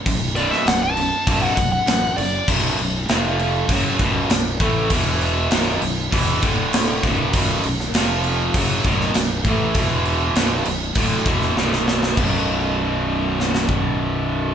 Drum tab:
CC |x-x-x-x-x-x-x-x-|x-x-x-x-x-x-x-x-|x-x-x-x-x-x-x-x-|x-x-x-x-x-x-x-x-|
SD |---oo-------o---|----o-------o---|----o-------o---|---oo------oo---|
BD |o-------o-o-----|o-------o-o---o-|o-------o-o---o-|o-------o-o---o-|

CC |x-x-x-x-x-x-----|x---------------|
SD |----o------ooooo|--------oo------|
BD |o-------o-o-----|o---------o-----|